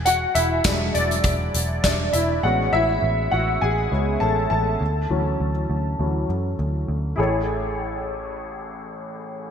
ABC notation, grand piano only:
X:1
M:4/4
L:1/8
Q:"Swing 16ths" 1/4=101
K:A
V:1 name="Grand piano"
[Ff] [Ee]2 [Dd]3 [Dd] [Ee] | [Ff] [Ee]2 [Ff] [Gg]2 [Aa] [Aa]- | [Aa]6 z2 | [EGAc]8 |]
V:2 name="Grand piano" clef=bass
z2 [F,G,D]6 | [G,B,C]4- [G,B,C] [G,B,C] z2 | z [E,F,C] z2 [E,F,C] z3 | A,,,8 |]